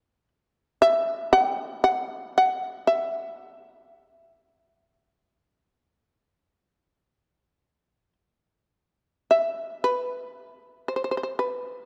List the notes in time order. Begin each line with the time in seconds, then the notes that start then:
Already playing: B4
0.82 E5
1.33 F#5
1.45 G5
1.84 F#5
2.38 F#5
2.87 E5
5.40 D#5
5.73 D5
6.06 C#5
6.39 C5
9.31 E5
9.84 B4
10.88 C5
10.96 C5
11.04 C5
11.11 C5
11.17 C5
11.23 C5
11.39 B4